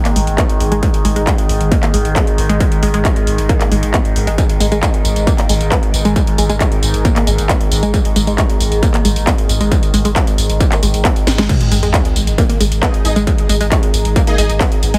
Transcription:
Already playing: G#2 D#3 G#4 D#5 A#5
0.05 A#3, clap, closed hi-hat
0.16 G#1 G#3, open hi-hat
0.27 G#1, closed hi-hat
0.38 B3, kick, clap, closed hi-hat
0.49 closed hi-hat
0.60 G#1, open hi-hat
0.72 G#1 G#3, closed hi-hat
0.83 G#3, kick, closed hi-hat
0.94 closed hi-hat
1.05 G#1 G#3, open hi-hat
1.16 G#1 G#3, closed hi-hat
1.27 kick, clap, closed hi-hat
1.38 closed hi-hat
1.49 G#1, open hi-hat
1.61 G#1, closed hi-hat
1.72 A#3, kick, closed hi-hat
1.83 A#3, clap, closed hi-hat
1.94 G#1 G#3, open hi-hat
2.05 G#1, closed hi-hat
2.16 B3, kick, clap, closed hi-hat
2.27 closed hi-hat
2.38 G#1, open hi-hat
2.49 G#1 G#3, closed hi-hat
2.60 G#3, kick, closed hi-hat
2.72 closed hi-hat
2.83 G#1 G#3, open hi-hat
2.94 G#1 G#3, closed hi-hat
3.05 kick, clap, closed hi-hat
3.16 closed hi-hat
3.27 G#1, open hi-hat
3.38 G#1, closed hi-hat
3.49 A#3, kick, closed hi-hat
3.61 A#3, clap, closed hi-hat
3.72 G#1 G#3, open hi-hat
3.83 G#1, closed hi-hat
3.94 B3, kick, clap, closed hi-hat
4.05 closed hi-hat
4.16 G#1, open hi-hat
4.27 G#1 G#3, closed hi-hat
4.38 G#3, kick, closed hi-hat, tambourine
4.49 closed hi-hat
4.60 G#1 G#3, open hi-hat, tambourine
4.72 G#1 G#3, closed hi-hat, tambourine
4.83 kick, clap, closed hi-hat, tambourine
4.94 closed hi-hat
5.05 G#1, open hi-hat, tambourine
5.16 G#1, closed hi-hat, tambourine
5.27 A#3, kick, closed hi-hat, tambourine
5.38 A#3, clap, closed hi-hat
5.49 G#1 G#3, open hi-hat, tambourine
5.61 G#1, closed hi-hat, tambourine
5.72 B3, kick, clap, closed hi-hat, tambourine
5.83 closed hi-hat
5.94 G#1, open hi-hat, tambourine
6.05 G#1 G#3, closed hi-hat, tambourine
6.16 G#3, kick, closed hi-hat, tambourine
6.27 closed hi-hat
6.38 G#1 G#3, open hi-hat, tambourine
6.49 G#1 G#3, closed hi-hat, tambourine
6.60 kick, clap, closed hi-hat, tambourine
6.72 closed hi-hat
6.83 G#1, open hi-hat, tambourine
6.94 G#1, closed hi-hat, tambourine
7.05 A#3, kick, closed hi-hat, tambourine
7.16 A#3, clap, closed hi-hat
7.27 G#1 G#3, open hi-hat, tambourine
7.38 G#1, closed hi-hat, tambourine
7.49 B3, kick, clap, closed hi-hat, tambourine
7.61 closed hi-hat
7.72 G#1, open hi-hat, tambourine
7.83 G#1 G#3, closed hi-hat, tambourine
7.94 G#3, kick, closed hi-hat, tambourine
8.05 closed hi-hat
8.16 G#1 G#3, open hi-hat, tambourine
8.27 G#1 G#3, closed hi-hat, tambourine
8.38 kick, clap, closed hi-hat, tambourine
8.50 closed hi-hat
8.60 G#1, open hi-hat, tambourine
8.72 G#1, closed hi-hat, tambourine
8.83 A#3, kick, closed hi-hat, tambourine
8.94 A#3, clap, closed hi-hat
9.05 G#1 G#3, open hi-hat, tambourine
9.16 G#1, closed hi-hat, tambourine
9.27 B3, kick, clap, closed hi-hat, tambourine
9.38 closed hi-hat
9.49 G#1, open hi-hat, tambourine
9.61 G#1 G#3, closed hi-hat, tambourine
9.72 G#3, kick, closed hi-hat, tambourine
9.83 closed hi-hat, tambourine
9.94 G#1 G#3, open hi-hat, tambourine
10.05 G#1 G#3, closed hi-hat, tambourine
10.16 kick, clap, closed hi-hat, tambourine
10.27 closed hi-hat, tambourine
10.38 G#1, open hi-hat, tambourine
10.49 G#1, closed hi-hat, tambourine
10.60 A#3, kick, closed hi-hat, tambourine
10.72 A#3, clap, closed hi-hat, tambourine
10.83 G#1 G#3, open hi-hat, tambourine
10.94 G#1, closed hi-hat, tambourine
11.05 B3, kick, clap, closed hi-hat, tambourine
11.16 closed hi-hat, tambourine
11.27 G#1, snare, open hi-hat, tambourine
11.38 G#1 G#3, snare, closed hi-hat, tambourine
11.49 G#3 G#4, kick, closed hi-hat, crash, tambourine, sub drop
11.61 D#5 A#5, closed hi-hat
11.71 G#1 G#3, open hi-hat, tambourine
11.83 G#1 G#3, closed hi-hat, tambourine
11.94 kick, clap, closed hi-hat, tambourine
12.05 closed hi-hat
12.16 G#1, open hi-hat, tambourine
12.27 G#1, closed hi-hat, tambourine
12.38 A#3, kick, closed hi-hat, tambourine
12.49 A#3, closed hi-hat
12.60 G#1 G#3, open hi-hat, tambourine
12.72 G#1, closed hi-hat, tambourine
12.83 B3 D#4 G#4 D#5, kick, clap, closed hi-hat, tambourine
12.94 closed hi-hat
13.05 G#1 D#4 G#4 D#5, open hi-hat, tambourine
13.16 G#1 G#3, closed hi-hat, tambourine
13.27 G#3, kick, closed hi-hat, tambourine
13.38 closed hi-hat
13.49 G#1 G#3, open hi-hat, tambourine
13.61 G#1 G#3, closed hi-hat, tambourine
13.72 kick, clap, closed hi-hat, tambourine
13.83 closed hi-hat
13.94 G#1, open hi-hat, tambourine
14.05 G#1, closed hi-hat, tambourine
14.16 A#3, kick, closed hi-hat, tambourine
14.27 A#3 D#4 G#4 D#5, closed hi-hat
14.38 G#1 G#3 D#4 G#4 D#5, open hi-hat, tambourine
14.50 G#1, closed hi-hat, tambourine
14.60 B3, kick, clap, closed hi-hat, tambourine
14.72 closed hi-hat
14.83 G#1, open hi-hat, tambourine
14.94 G#1 G#3, closed hi-hat, tambourine

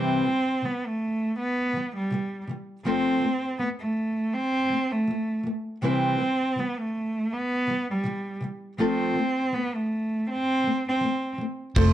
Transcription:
Already playing: C3 E3 G3 C4 E4 B4
0.24 C3 E3 G3
0.62 C3 E3 G3 B3
0.86 A3
1.38 B3
1.73 C3 E3 G3
1.96 G3
2.10 C3 E3 G3
2.47 C3 E3 G3
2.85 F3 A3 C4 F4 A4
3.22 F3 A3
3.59 F3 A3 B3
3.79 A3
4.34 C4
4.70 F3 A3
4.91 A3
5.08 F3 A3
5.43 F3 A3
5.82 C3 E3 G3 C4 E4 B4
6.18 C3 E3 G3
6.56 C3 E3 G3 B3
6.79 A3
7.33 B3
7.67 C3 E3 G3
7.90 G3
8.04 C3 E3 G3
8.41 C3 E3 G3
8.78 F3 A3 C4 F4 A4
9.16 F3 A3
9.52 F3 A3 B3
9.75 A3
10.30 C4
10.64 F3 A3
10.88 C4
11.01 F3 A3
11.38 F3 A3
11.76 F1 F3 A3 C4 E4 A4 C5, kick, crash

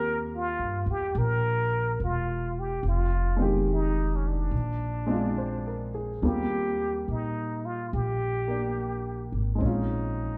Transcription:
Already playing: D#2 A#3 C4 F4 G4 A#4
0.36 F4
0.59 G2
0.86 E2
0.91 G4
1.15 A#1 A#4
2.00 E1 F4
2.59 G4
2.83 F1
2.88 F4
3.36 D#3 G#3 C4
3.42 G4
3.73 D#4
4.16 C#4
4.28 D4
4.51 A#1
5.06 G#3 C4 D4
5.11 F4
5.38 C5
5.67 A#4
5.94 G#4
6.22 D#2 G3 A#3 C4 F4
6.27 G4
7.08 A#2 D#4
7.65 F4
7.93 A#1 G4
8.48 A#3 D4
9.32 G#1
9.55 G#3 C4
9.61 A#1 C#4 D#4
9.66 F4

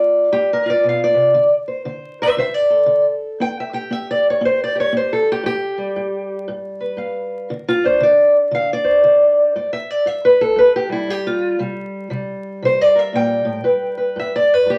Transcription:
Already playing: G2 F4 D5
0.32 G2 G4
0.53 A#4
0.66 F4
0.70 D5
0.84 B2
0.89 F5
1.04 D5
1.14 C3
1.34 D3
1.68 C5
1.85 D3 C5
2.22 C5 E5
2.37 D3 C5 E5
2.54 D5
2.70 A4
2.86 D3
3.40 C4 G5
3.60 E5
3.73 G4 G5
3.91 C4 E5
4.11 D5
4.30 C#5
4.41 C4
4.45 C5
4.64 D5
4.75 G4
4.80 C#5
4.93 C4
4.97 C5
5.13 A4
5.32 G4
5.43 G2 G4
5.78 G3
5.96 G2
6.48 G2
6.80 B4
6.97 G2 F5
7.50 D3 A#4
7.68 F4
7.84 D4 C5
8.01 D3 D5
8.51 D3 F5
8.73 D5
8.84 C5
9.04 D3 C5
9.56 G2 D5
9.73 E5
9.90 D5
10.06 G2 E5
10.25 B4
10.41 A4
10.56 G2 B4
10.76 G4
10.89 G3 E4
11.08 G2 G4
11.27 F4
11.59 C3 G3
12.10 C3 G3
12.62 C3 C5
12.81 D5
12.95 A#4 E5
13.13 A#2 G5
13.45 A2
13.64 G2 B4
13.97 B4
14.16 G2 E5
14.36 D5
14.54 B4
14.66 G2 G4

